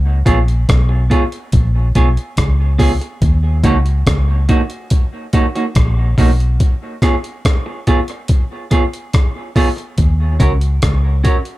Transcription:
Already playing: fingered electric bass C#2
0.26 fingered electric bass A#1, clean electric guitar B3 F4 G#4 C#5, kick, closed hi-hat
0.48 closed hi-hat
0.69 fingered electric bass B1, kick, cross-stick, closed hi-hat
0.89 muted clean electric guitar stroke
1.10 clean electric guitar B3 F4 G#4 C#5, kick, closed hi-hat
1.32 closed hi-hat
1.52 fingered electric bass A#1, kick, closed hi-hat
1.95 fingered electric bass B1, clean electric guitar B3 F4 G#4 C#5, kick, closed hi-hat
2.17 closed hi-hat
2.37 fingered electric bass C#2, kick, cross-stick, closed hi-hat
2.78 clean electric guitar B3 F4 G#4 C#5, kick, open hi-hat
3.00 muted clean electric guitar stroke, closed hi-hat
3.22 fingered electric bass D#2, kick, closed hi-hat
3.64 fingered electric bass C#2, clean electric guitar A#3 D#4 F#4 C#5, kick, closed hi-hat
3.86 closed hi-hat
4.07 fingered electric bass C#2, kick, cross-stick, closed hi-hat
4.49 clean electric guitar A#3 D#4 F#4 C#5, kick, closed hi-hat
4.70 closed hi-hat
4.90 kick, closed hi-hat
5.33 clean electric guitar A#3 D#4 F#4 C#5, kick, closed hi-hat
5.55 clean electric guitar A#3 D#4 F#4 C#5, closed hi-hat
5.75 fingered electric bass A#1, kick, cross-stick, closed hi-hat
6.18 fingered electric bass B1, clean electric guitar A#3 D#4 F#4 C#5, kick, open hi-hat
6.40 closed hi-hat
6.60 kick, closed hi-hat
7.02 clean electric guitar B3 F4 G#4 C#5, kick, cross-stick, closed hi-hat
7.24 closed hi-hat
7.45 kick, cross-stick, closed hi-hat
7.66 muted clean electric guitar stroke
7.87 clean electric guitar B3 F4 G#4 C#5, kick, closed hi-hat
8.08 closed hi-hat
8.28 kick, closed hi-hat
8.71 clean electric guitar B3 F4 G#4 C#5, kick, closed hi-hat
8.93 closed hi-hat
9.13 kick, cross-stick, closed hi-hat
9.56 clean electric guitar B3 F4 G#4 C#5, kick, open hi-hat
9.76 muted clean electric guitar stroke, closed hi-hat
9.98 fingered electric bass D#2, kick, closed hi-hat
10.39 fingered electric bass C#2, clean electric guitar C#4 F#4 A#4 C#5, kick, closed hi-hat
10.61 closed hi-hat
10.82 fingered electric bass C#2, kick, cross-stick, closed hi-hat
11.24 clean electric guitar C#4 F#4 A#4 C#5, kick, closed hi-hat
11.45 closed hi-hat

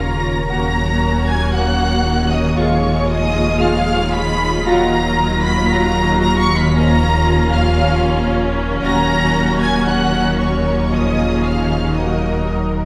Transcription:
Already playing: sub bass D#1, cello section D#2, double bass section D#2, analog synth pad C#3 C#4 A#4 C#5, viola section A#3 F4, violin section A#5 A#6
0.48 cello section D#2, double bass section D#2, analog synth pad F#3, french horn section A#3 F#4, viola section A#3 F#4, violin section A#5 A#6
1.27 violin section G#5 G#6
1.53 french horn section A#3 F#4, violin section F#5 F#6
2.31 violin section D#5 D#6
2.56 sub bass D#1, analog synth pad F3 D#4 G#4, french horn section G#3 F4, viola section G#3 F4, violin section C#5 C#6
3.09 violin section D#5 D#6
3.60 french horn section G#3 F4, violin section F5 F6
4.13 violin section B5 B6
4.65 cello section D#2, double bass section D#2, french horn section F#3 F4, viola section F#3, analog synth pad F#3 A#4 F5, violin section A#5 A#6
5.44 violin section B5 B6
5.69 french horn section F#3 F4, violin section A#5 A#6
6.22 violin section A#5 A#6
6.39 violin section C#6 C#7
6.57 violin section B5 B6
6.74 french horn section F3 C#4, analog synth pad F3 C#4, viola section C#4 F4, violin section A#5 A#6
7.53 violin section F5 F6
7.78 french horn section F3 C#4
8.82 sub bass D#1, cello section D#2, double bass section D#2, french horn section F#3 C#4, analog synth pad F#3 C#5, viola section F#4, violin section A#5 A#6
9.61 violin section G#5 G#6
9.87 french horn section F#3 C#4, violin section F#5 F#6
10.39 violin section C#5 C#6
10.90 french horn section F3 C#4, analog synth pad F3 D#4 G#4, viola section C#4 F4, violin section D#5 D#6
11.43 violin section F5 F6
11.95 french horn section F#3 A#3, analog synth pad F#3 A#4 D#5, viola section A#3 F#4, violin section D#5 D#6

